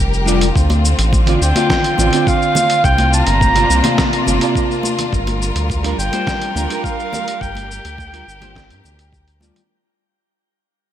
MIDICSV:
0, 0, Header, 1, 6, 480
1, 0, Start_track
1, 0, Key_signature, -2, "minor"
1, 0, Tempo, 571429
1, 466, Time_signature, 4, 2, 24, 8
1, 9179, End_track
2, 0, Start_track
2, 0, Title_t, "Soprano saxophone"
2, 0, Program_c, 0, 64
2, 1198, Note_on_c, 0, 79, 94
2, 1915, Note_on_c, 0, 77, 106
2, 1928, Note_off_c, 0, 79, 0
2, 2392, Note_on_c, 0, 79, 117
2, 2404, Note_off_c, 0, 77, 0
2, 2629, Note_off_c, 0, 79, 0
2, 2638, Note_on_c, 0, 82, 109
2, 3558, Note_off_c, 0, 82, 0
2, 5035, Note_on_c, 0, 79, 122
2, 5692, Note_off_c, 0, 79, 0
2, 5692, Note_on_c, 0, 79, 74
2, 5747, Note_on_c, 0, 77, 117
2, 5760, Note_off_c, 0, 79, 0
2, 6228, Note_on_c, 0, 79, 126
2, 6241, Note_off_c, 0, 77, 0
2, 7907, Note_off_c, 0, 79, 0
2, 9179, End_track
3, 0, Start_track
3, 0, Title_t, "Hollow-body jazz guitar"
3, 0, Program_c, 1, 26
3, 213, Note_on_c, 1, 55, 95
3, 219, Note_on_c, 1, 62, 88
3, 228, Note_on_c, 1, 65, 86
3, 235, Note_on_c, 1, 74, 107
3, 377, Note_off_c, 1, 55, 0
3, 380, Note_off_c, 1, 62, 0
3, 384, Note_off_c, 1, 65, 0
3, 388, Note_off_c, 1, 74, 0
3, 1058, Note_on_c, 1, 50, 97
3, 1064, Note_on_c, 1, 60, 88
3, 1072, Note_on_c, 1, 65, 84
3, 1079, Note_on_c, 1, 74, 107
3, 1160, Note_off_c, 1, 50, 0
3, 1163, Note_off_c, 1, 60, 0
3, 1167, Note_off_c, 1, 65, 0
3, 1170, Note_off_c, 1, 74, 0
3, 1299, Note_on_c, 1, 50, 80
3, 1307, Note_on_c, 1, 60, 68
3, 1315, Note_on_c, 1, 65, 73
3, 1323, Note_on_c, 1, 77, 85
3, 1634, Note_off_c, 1, 50, 0
3, 1637, Note_off_c, 1, 60, 0
3, 1642, Note_off_c, 1, 65, 0
3, 1645, Note_off_c, 1, 77, 0
3, 1661, Note_on_c, 1, 50, 73
3, 1666, Note_on_c, 1, 60, 69
3, 1674, Note_on_c, 1, 65, 69
3, 1682, Note_on_c, 1, 74, 84
3, 1755, Note_off_c, 1, 50, 0
3, 1758, Note_off_c, 1, 60, 0
3, 1762, Note_off_c, 1, 65, 0
3, 1766, Note_off_c, 1, 74, 0
3, 1767, Note_on_c, 1, 50, 95
3, 1785, Note_on_c, 1, 60, 80
3, 1798, Note_on_c, 1, 65, 79
3, 1815, Note_on_c, 1, 74, 99
3, 2362, Note_off_c, 1, 50, 0
3, 2371, Note_off_c, 1, 60, 0
3, 2378, Note_off_c, 1, 65, 0
3, 2386, Note_off_c, 1, 74, 0
3, 2974, Note_on_c, 1, 48, 102
3, 2982, Note_on_c, 1, 58, 86
3, 2988, Note_on_c, 1, 65, 91
3, 2995, Note_on_c, 1, 74, 110
3, 3078, Note_off_c, 1, 48, 0
3, 3082, Note_off_c, 1, 58, 0
3, 3085, Note_off_c, 1, 65, 0
3, 3089, Note_off_c, 1, 74, 0
3, 3213, Note_on_c, 1, 48, 73
3, 3222, Note_on_c, 1, 58, 74
3, 3229, Note_on_c, 1, 65, 72
3, 3236, Note_on_c, 1, 77, 89
3, 3550, Note_off_c, 1, 48, 0
3, 3555, Note_off_c, 1, 58, 0
3, 3559, Note_off_c, 1, 65, 0
3, 3562, Note_off_c, 1, 77, 0
3, 3573, Note_on_c, 1, 48, 75
3, 3581, Note_on_c, 1, 58, 64
3, 3590, Note_on_c, 1, 65, 70
3, 3596, Note_on_c, 1, 74, 81
3, 3670, Note_off_c, 1, 48, 0
3, 3675, Note_off_c, 1, 58, 0
3, 3680, Note_off_c, 1, 65, 0
3, 3680, Note_on_c, 1, 48, 90
3, 3683, Note_off_c, 1, 74, 0
3, 3696, Note_on_c, 1, 58, 86
3, 3710, Note_on_c, 1, 65, 84
3, 3726, Note_on_c, 1, 74, 105
3, 4278, Note_off_c, 1, 48, 0
3, 4286, Note_off_c, 1, 58, 0
3, 4294, Note_off_c, 1, 65, 0
3, 4301, Note_off_c, 1, 74, 0
3, 4898, Note_on_c, 1, 55, 92
3, 4906, Note_on_c, 1, 62, 93
3, 4912, Note_on_c, 1, 65, 92
3, 4922, Note_on_c, 1, 70, 110
3, 5000, Note_off_c, 1, 55, 0
3, 5004, Note_off_c, 1, 62, 0
3, 5007, Note_off_c, 1, 65, 0
3, 5012, Note_off_c, 1, 70, 0
3, 5139, Note_on_c, 1, 55, 73
3, 5145, Note_on_c, 1, 62, 70
3, 5152, Note_on_c, 1, 65, 67
3, 5160, Note_on_c, 1, 72, 82
3, 5473, Note_off_c, 1, 55, 0
3, 5476, Note_off_c, 1, 62, 0
3, 5480, Note_off_c, 1, 65, 0
3, 5484, Note_off_c, 1, 72, 0
3, 5500, Note_on_c, 1, 55, 78
3, 5506, Note_on_c, 1, 62, 70
3, 5515, Note_on_c, 1, 65, 71
3, 5521, Note_on_c, 1, 70, 87
3, 5593, Note_off_c, 1, 55, 0
3, 5598, Note_off_c, 1, 62, 0
3, 5602, Note_off_c, 1, 65, 0
3, 5603, Note_on_c, 1, 55, 88
3, 5605, Note_off_c, 1, 70, 0
3, 5618, Note_on_c, 1, 62, 80
3, 5634, Note_on_c, 1, 65, 80
3, 5649, Note_on_c, 1, 70, 100
3, 6786, Note_off_c, 1, 55, 0
3, 6794, Note_off_c, 1, 62, 0
3, 6802, Note_off_c, 1, 65, 0
3, 6809, Note_off_c, 1, 70, 0
3, 6817, Note_on_c, 1, 55, 94
3, 6824, Note_on_c, 1, 62, 86
3, 6831, Note_on_c, 1, 65, 88
3, 6839, Note_on_c, 1, 70, 106
3, 6920, Note_off_c, 1, 55, 0
3, 6923, Note_off_c, 1, 62, 0
3, 6927, Note_off_c, 1, 65, 0
3, 6931, Note_off_c, 1, 70, 0
3, 7057, Note_on_c, 1, 55, 77
3, 7066, Note_on_c, 1, 62, 73
3, 7074, Note_on_c, 1, 65, 73
3, 7082, Note_on_c, 1, 72, 81
3, 7393, Note_off_c, 1, 55, 0
3, 7397, Note_off_c, 1, 62, 0
3, 7401, Note_off_c, 1, 65, 0
3, 7405, Note_off_c, 1, 72, 0
3, 7896, Note_on_c, 1, 55, 102
3, 7901, Note_on_c, 1, 62, 90
3, 7910, Note_on_c, 1, 65, 84
3, 7919, Note_on_c, 1, 74, 110
3, 8059, Note_off_c, 1, 55, 0
3, 8061, Note_off_c, 1, 62, 0
3, 8066, Note_off_c, 1, 65, 0
3, 8070, Note_off_c, 1, 74, 0
3, 9179, End_track
4, 0, Start_track
4, 0, Title_t, "String section"
4, 0, Program_c, 2, 48
4, 0, Note_on_c, 2, 55, 78
4, 0, Note_on_c, 2, 67, 74
4, 0, Note_on_c, 2, 70, 87
4, 433, Note_off_c, 2, 55, 0
4, 433, Note_off_c, 2, 70, 0
4, 445, Note_off_c, 2, 67, 0
4, 466, Note_on_c, 2, 65, 85
4, 469, Note_on_c, 2, 50, 78
4, 470, Note_on_c, 2, 60, 71
4, 2368, Note_off_c, 2, 50, 0
4, 2369, Note_off_c, 2, 60, 0
4, 2383, Note_on_c, 2, 48, 81
4, 2385, Note_on_c, 2, 62, 75
4, 2387, Note_on_c, 2, 58, 73
4, 4285, Note_off_c, 2, 48, 0
4, 4286, Note_off_c, 2, 62, 0
4, 4287, Note_off_c, 2, 58, 0
4, 4303, Note_on_c, 2, 55, 88
4, 4308, Note_on_c, 2, 70, 86
4, 6193, Note_off_c, 2, 65, 0
4, 6228, Note_on_c, 2, 67, 96
4, 8111, Note_off_c, 2, 55, 0
4, 8113, Note_off_c, 2, 70, 0
4, 8128, Note_off_c, 2, 67, 0
4, 9179, End_track
5, 0, Start_track
5, 0, Title_t, "Analog synth bass"
5, 0, Program_c, 3, 38
5, 0, Note_on_c, 3, 29, 91
5, 429, Note_off_c, 3, 29, 0
5, 468, Note_on_c, 3, 38, 100
5, 790, Note_off_c, 3, 38, 0
5, 827, Note_on_c, 3, 33, 99
5, 1149, Note_off_c, 3, 33, 0
5, 1186, Note_on_c, 3, 38, 99
5, 1283, Note_off_c, 3, 38, 0
5, 1665, Note_on_c, 3, 33, 89
5, 1763, Note_off_c, 3, 33, 0
5, 2387, Note_on_c, 3, 36, 97
5, 2709, Note_off_c, 3, 36, 0
5, 2746, Note_on_c, 3, 31, 92
5, 3068, Note_off_c, 3, 31, 0
5, 3107, Note_on_c, 3, 36, 102
5, 3203, Note_off_c, 3, 36, 0
5, 3587, Note_on_c, 3, 31, 93
5, 3683, Note_off_c, 3, 31, 0
5, 4308, Note_on_c, 3, 31, 108
5, 4630, Note_off_c, 3, 31, 0
5, 4666, Note_on_c, 3, 38, 93
5, 4988, Note_off_c, 3, 38, 0
5, 5024, Note_on_c, 3, 31, 103
5, 5122, Note_off_c, 3, 31, 0
5, 5506, Note_on_c, 3, 38, 89
5, 5603, Note_off_c, 3, 38, 0
5, 6228, Note_on_c, 3, 31, 98
5, 6550, Note_off_c, 3, 31, 0
5, 6591, Note_on_c, 3, 38, 90
5, 6911, Note_off_c, 3, 38, 0
5, 6949, Note_on_c, 3, 31, 99
5, 7309, Note_on_c, 3, 43, 104
5, 7322, Note_off_c, 3, 31, 0
5, 7404, Note_off_c, 3, 43, 0
5, 7429, Note_on_c, 3, 38, 91
5, 7990, Note_off_c, 3, 38, 0
5, 9179, End_track
6, 0, Start_track
6, 0, Title_t, "Drums"
6, 113, Note_on_c, 9, 82, 22
6, 197, Note_off_c, 9, 82, 0
6, 232, Note_on_c, 9, 82, 85
6, 316, Note_off_c, 9, 82, 0
6, 348, Note_on_c, 9, 42, 51
6, 355, Note_on_c, 9, 82, 35
6, 432, Note_off_c, 9, 42, 0
6, 439, Note_off_c, 9, 82, 0
6, 466, Note_on_c, 9, 36, 102
6, 475, Note_on_c, 9, 82, 41
6, 550, Note_off_c, 9, 36, 0
6, 559, Note_off_c, 9, 82, 0
6, 585, Note_on_c, 9, 63, 88
6, 588, Note_on_c, 9, 42, 29
6, 596, Note_on_c, 9, 82, 21
6, 669, Note_off_c, 9, 63, 0
6, 672, Note_off_c, 9, 42, 0
6, 680, Note_off_c, 9, 82, 0
6, 714, Note_on_c, 9, 82, 77
6, 798, Note_off_c, 9, 82, 0
6, 829, Note_on_c, 9, 42, 54
6, 836, Note_on_c, 9, 82, 34
6, 913, Note_off_c, 9, 42, 0
6, 920, Note_off_c, 9, 82, 0
6, 946, Note_on_c, 9, 36, 104
6, 947, Note_on_c, 9, 63, 58
6, 954, Note_on_c, 9, 82, 45
6, 1030, Note_off_c, 9, 36, 0
6, 1031, Note_off_c, 9, 63, 0
6, 1038, Note_off_c, 9, 82, 0
6, 1067, Note_on_c, 9, 42, 41
6, 1075, Note_on_c, 9, 82, 22
6, 1151, Note_off_c, 9, 42, 0
6, 1159, Note_off_c, 9, 82, 0
6, 1195, Note_on_c, 9, 82, 74
6, 1279, Note_off_c, 9, 82, 0
6, 1308, Note_on_c, 9, 42, 53
6, 1308, Note_on_c, 9, 63, 94
6, 1316, Note_on_c, 9, 82, 34
6, 1392, Note_off_c, 9, 42, 0
6, 1392, Note_off_c, 9, 63, 0
6, 1400, Note_off_c, 9, 82, 0
6, 1426, Note_on_c, 9, 36, 109
6, 1429, Note_on_c, 9, 38, 74
6, 1436, Note_on_c, 9, 82, 41
6, 1510, Note_off_c, 9, 36, 0
6, 1513, Note_off_c, 9, 38, 0
6, 1520, Note_off_c, 9, 82, 0
6, 1549, Note_on_c, 9, 42, 45
6, 1556, Note_on_c, 9, 82, 22
6, 1633, Note_off_c, 9, 42, 0
6, 1640, Note_off_c, 9, 82, 0
6, 1664, Note_on_c, 9, 63, 64
6, 1674, Note_on_c, 9, 82, 86
6, 1748, Note_off_c, 9, 63, 0
6, 1758, Note_off_c, 9, 82, 0
6, 1787, Note_on_c, 9, 42, 52
6, 1795, Note_on_c, 9, 82, 33
6, 1871, Note_off_c, 9, 42, 0
6, 1879, Note_off_c, 9, 82, 0
6, 1906, Note_on_c, 9, 36, 105
6, 1912, Note_on_c, 9, 82, 44
6, 1990, Note_off_c, 9, 36, 0
6, 1996, Note_off_c, 9, 82, 0
6, 2034, Note_on_c, 9, 82, 22
6, 2118, Note_off_c, 9, 82, 0
6, 2142, Note_on_c, 9, 64, 87
6, 2149, Note_on_c, 9, 63, 77
6, 2153, Note_on_c, 9, 82, 83
6, 2226, Note_off_c, 9, 64, 0
6, 2233, Note_off_c, 9, 63, 0
6, 2237, Note_off_c, 9, 82, 0
6, 2266, Note_on_c, 9, 42, 55
6, 2273, Note_on_c, 9, 82, 34
6, 2350, Note_off_c, 9, 42, 0
6, 2357, Note_off_c, 9, 82, 0
6, 2386, Note_on_c, 9, 36, 98
6, 2390, Note_on_c, 9, 82, 43
6, 2470, Note_off_c, 9, 36, 0
6, 2474, Note_off_c, 9, 82, 0
6, 2504, Note_on_c, 9, 63, 86
6, 2507, Note_on_c, 9, 42, 30
6, 2515, Note_on_c, 9, 82, 22
6, 2588, Note_off_c, 9, 63, 0
6, 2591, Note_off_c, 9, 42, 0
6, 2599, Note_off_c, 9, 82, 0
6, 2632, Note_on_c, 9, 82, 75
6, 2716, Note_off_c, 9, 82, 0
6, 2743, Note_on_c, 9, 42, 54
6, 2751, Note_on_c, 9, 82, 33
6, 2827, Note_off_c, 9, 42, 0
6, 2835, Note_off_c, 9, 82, 0
6, 2866, Note_on_c, 9, 36, 102
6, 2872, Note_on_c, 9, 63, 61
6, 2873, Note_on_c, 9, 82, 46
6, 2950, Note_off_c, 9, 36, 0
6, 2956, Note_off_c, 9, 63, 0
6, 2957, Note_off_c, 9, 82, 0
6, 2987, Note_on_c, 9, 42, 45
6, 2995, Note_on_c, 9, 82, 22
6, 3071, Note_off_c, 9, 42, 0
6, 3079, Note_off_c, 9, 82, 0
6, 3111, Note_on_c, 9, 82, 73
6, 3195, Note_off_c, 9, 82, 0
6, 3224, Note_on_c, 9, 42, 54
6, 3231, Note_on_c, 9, 63, 83
6, 3232, Note_on_c, 9, 82, 32
6, 3235, Note_on_c, 9, 64, 77
6, 3308, Note_off_c, 9, 42, 0
6, 3315, Note_off_c, 9, 63, 0
6, 3316, Note_off_c, 9, 82, 0
6, 3319, Note_off_c, 9, 64, 0
6, 3345, Note_on_c, 9, 38, 68
6, 3346, Note_on_c, 9, 36, 107
6, 3352, Note_on_c, 9, 82, 40
6, 3429, Note_off_c, 9, 38, 0
6, 3430, Note_off_c, 9, 36, 0
6, 3436, Note_off_c, 9, 82, 0
6, 3470, Note_on_c, 9, 42, 43
6, 3477, Note_on_c, 9, 82, 22
6, 3554, Note_off_c, 9, 42, 0
6, 3561, Note_off_c, 9, 82, 0
6, 3585, Note_on_c, 9, 63, 63
6, 3593, Note_on_c, 9, 82, 84
6, 3669, Note_off_c, 9, 63, 0
6, 3677, Note_off_c, 9, 82, 0
6, 3707, Note_on_c, 9, 42, 57
6, 3715, Note_on_c, 9, 82, 33
6, 3791, Note_off_c, 9, 42, 0
6, 3799, Note_off_c, 9, 82, 0
6, 3826, Note_on_c, 9, 36, 98
6, 3835, Note_on_c, 9, 82, 46
6, 3910, Note_off_c, 9, 36, 0
6, 3919, Note_off_c, 9, 82, 0
6, 3957, Note_on_c, 9, 82, 19
6, 4041, Note_off_c, 9, 82, 0
6, 4059, Note_on_c, 9, 63, 90
6, 4075, Note_on_c, 9, 82, 73
6, 4143, Note_off_c, 9, 63, 0
6, 4159, Note_off_c, 9, 82, 0
6, 4188, Note_on_c, 9, 42, 56
6, 4189, Note_on_c, 9, 64, 69
6, 4196, Note_on_c, 9, 82, 32
6, 4272, Note_off_c, 9, 42, 0
6, 4273, Note_off_c, 9, 64, 0
6, 4280, Note_off_c, 9, 82, 0
6, 4306, Note_on_c, 9, 36, 93
6, 4315, Note_on_c, 9, 82, 41
6, 4390, Note_off_c, 9, 36, 0
6, 4399, Note_off_c, 9, 82, 0
6, 4428, Note_on_c, 9, 42, 31
6, 4430, Note_on_c, 9, 63, 78
6, 4436, Note_on_c, 9, 82, 22
6, 4512, Note_off_c, 9, 42, 0
6, 4514, Note_off_c, 9, 63, 0
6, 4520, Note_off_c, 9, 82, 0
6, 4555, Note_on_c, 9, 82, 71
6, 4639, Note_off_c, 9, 82, 0
6, 4669, Note_on_c, 9, 42, 59
6, 4676, Note_on_c, 9, 82, 32
6, 4753, Note_off_c, 9, 42, 0
6, 4760, Note_off_c, 9, 82, 0
6, 4779, Note_on_c, 9, 63, 56
6, 4786, Note_on_c, 9, 36, 92
6, 4796, Note_on_c, 9, 82, 45
6, 4863, Note_off_c, 9, 63, 0
6, 4870, Note_off_c, 9, 36, 0
6, 4880, Note_off_c, 9, 82, 0
6, 4909, Note_on_c, 9, 42, 49
6, 4917, Note_on_c, 9, 82, 23
6, 4993, Note_off_c, 9, 42, 0
6, 5001, Note_off_c, 9, 82, 0
6, 5035, Note_on_c, 9, 82, 74
6, 5119, Note_off_c, 9, 82, 0
6, 5148, Note_on_c, 9, 42, 57
6, 5148, Note_on_c, 9, 63, 85
6, 5156, Note_on_c, 9, 82, 33
6, 5232, Note_off_c, 9, 42, 0
6, 5232, Note_off_c, 9, 63, 0
6, 5240, Note_off_c, 9, 82, 0
6, 5266, Note_on_c, 9, 36, 106
6, 5270, Note_on_c, 9, 38, 69
6, 5277, Note_on_c, 9, 82, 40
6, 5350, Note_off_c, 9, 36, 0
6, 5354, Note_off_c, 9, 38, 0
6, 5361, Note_off_c, 9, 82, 0
6, 5389, Note_on_c, 9, 42, 47
6, 5396, Note_on_c, 9, 82, 22
6, 5473, Note_off_c, 9, 42, 0
6, 5480, Note_off_c, 9, 82, 0
6, 5510, Note_on_c, 9, 63, 67
6, 5516, Note_on_c, 9, 82, 78
6, 5594, Note_off_c, 9, 63, 0
6, 5600, Note_off_c, 9, 82, 0
6, 5632, Note_on_c, 9, 42, 56
6, 5639, Note_on_c, 9, 82, 35
6, 5716, Note_off_c, 9, 42, 0
6, 5723, Note_off_c, 9, 82, 0
6, 5746, Note_on_c, 9, 36, 94
6, 5757, Note_on_c, 9, 82, 43
6, 5830, Note_off_c, 9, 36, 0
6, 5841, Note_off_c, 9, 82, 0
6, 5877, Note_on_c, 9, 82, 20
6, 5961, Note_off_c, 9, 82, 0
6, 5987, Note_on_c, 9, 63, 82
6, 5990, Note_on_c, 9, 64, 82
6, 5999, Note_on_c, 9, 82, 73
6, 6071, Note_off_c, 9, 63, 0
6, 6074, Note_off_c, 9, 64, 0
6, 6083, Note_off_c, 9, 82, 0
6, 6113, Note_on_c, 9, 42, 61
6, 6121, Note_on_c, 9, 82, 31
6, 6197, Note_off_c, 9, 42, 0
6, 6205, Note_off_c, 9, 82, 0
6, 6226, Note_on_c, 9, 36, 106
6, 6239, Note_on_c, 9, 82, 44
6, 6310, Note_off_c, 9, 36, 0
6, 6323, Note_off_c, 9, 82, 0
6, 6344, Note_on_c, 9, 63, 85
6, 6356, Note_on_c, 9, 42, 34
6, 6363, Note_on_c, 9, 82, 21
6, 6428, Note_off_c, 9, 63, 0
6, 6440, Note_off_c, 9, 42, 0
6, 6447, Note_off_c, 9, 82, 0
6, 6479, Note_on_c, 9, 82, 77
6, 6563, Note_off_c, 9, 82, 0
6, 6593, Note_on_c, 9, 42, 57
6, 6600, Note_on_c, 9, 82, 34
6, 6677, Note_off_c, 9, 42, 0
6, 6684, Note_off_c, 9, 82, 0
6, 6706, Note_on_c, 9, 36, 105
6, 6706, Note_on_c, 9, 63, 62
6, 6718, Note_on_c, 9, 82, 45
6, 6790, Note_off_c, 9, 36, 0
6, 6790, Note_off_c, 9, 63, 0
6, 6802, Note_off_c, 9, 82, 0
6, 6835, Note_on_c, 9, 42, 46
6, 6843, Note_on_c, 9, 82, 20
6, 6919, Note_off_c, 9, 42, 0
6, 6927, Note_off_c, 9, 82, 0
6, 6962, Note_on_c, 9, 82, 73
6, 7046, Note_off_c, 9, 82, 0
6, 7069, Note_on_c, 9, 63, 85
6, 7069, Note_on_c, 9, 64, 92
6, 7071, Note_on_c, 9, 42, 57
6, 7079, Note_on_c, 9, 82, 30
6, 7153, Note_off_c, 9, 63, 0
6, 7153, Note_off_c, 9, 64, 0
6, 7155, Note_off_c, 9, 42, 0
6, 7163, Note_off_c, 9, 82, 0
6, 7186, Note_on_c, 9, 36, 109
6, 7192, Note_on_c, 9, 38, 76
6, 7200, Note_on_c, 9, 82, 43
6, 7270, Note_off_c, 9, 36, 0
6, 7276, Note_off_c, 9, 38, 0
6, 7284, Note_off_c, 9, 82, 0
6, 7312, Note_on_c, 9, 42, 48
6, 7319, Note_on_c, 9, 82, 22
6, 7396, Note_off_c, 9, 42, 0
6, 7403, Note_off_c, 9, 82, 0
6, 7423, Note_on_c, 9, 63, 62
6, 7437, Note_on_c, 9, 82, 83
6, 7507, Note_off_c, 9, 63, 0
6, 7521, Note_off_c, 9, 82, 0
6, 7551, Note_on_c, 9, 42, 60
6, 7559, Note_on_c, 9, 82, 31
6, 7635, Note_off_c, 9, 42, 0
6, 7643, Note_off_c, 9, 82, 0
6, 7666, Note_on_c, 9, 36, 99
6, 7675, Note_on_c, 9, 82, 44
6, 7750, Note_off_c, 9, 36, 0
6, 7759, Note_off_c, 9, 82, 0
6, 7792, Note_on_c, 9, 42, 34
6, 7799, Note_on_c, 9, 82, 20
6, 7876, Note_off_c, 9, 42, 0
6, 7883, Note_off_c, 9, 82, 0
6, 7903, Note_on_c, 9, 63, 95
6, 7917, Note_on_c, 9, 82, 79
6, 7987, Note_off_c, 9, 63, 0
6, 8001, Note_off_c, 9, 82, 0
6, 8032, Note_on_c, 9, 42, 58
6, 8032, Note_on_c, 9, 64, 73
6, 8039, Note_on_c, 9, 82, 33
6, 8116, Note_off_c, 9, 42, 0
6, 8116, Note_off_c, 9, 64, 0
6, 8123, Note_off_c, 9, 82, 0
6, 9179, End_track
0, 0, End_of_file